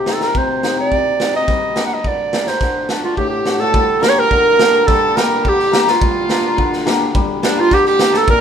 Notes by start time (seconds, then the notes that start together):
Already playing: C3 G4
0.06 C4 D#4 A4 A#4, snare
0.21 A#4, snare
0.35 C3 C5, kick
0.63 D#4 G4, snare
0.78 C4 D#4 G4 D5
0.92 C3, kick
1.20 D#4 G4, snare
1.34 C4 D#4 G4 D#5, snare
1.48 G3, kick, snare
1.76 A#3 D4 G4, snare
1.87 F#5
1.94 D#5
2.04 D3 D5, kick
2.33 A#3 D4 G4, snare
2.47 C5, snare
2.61 D3, kick, snare
2.89 D4 F#4, snare
3.03 A3 D4 F4 F#4
3.16 A2 G4, kick
3.30 G4
3.45 D4 F#4, snare
3.59 A3 D4 F#4 A4
3.74 G3, kick
4.01 A#3 D4 G4 A#4, snare
4.09 C#5
4.16 A#4
4.31 D3, kick
4.58 A#3 D4 G4, snare
4.73 A#4
4.87 G3 A4, kick, snare
5.16 A#3 D4 G4 A#4, snare
5.44 D3 G4, kick
5.49 G4
5.59 snare
5.72 A#3 D4 A#4, snare
5.81 G4
5.88 F4, snare
6.01 G3, kick
6.29 A#3 D4 A#4, snare
6.57 D3, kick
6.73 snare
6.86 A#3 D4 G4, snare
7.15 G3, kick
7.42 A#3 D4 G4, snare
7.57 F4
7.71 D3 G4, kick, snare
7.85 G4, snare
7.99 A#3 D4 G4, snare
8.13 A4, snare
8.17 A4
8.25 A#2 A#4, kick
8.31 A#4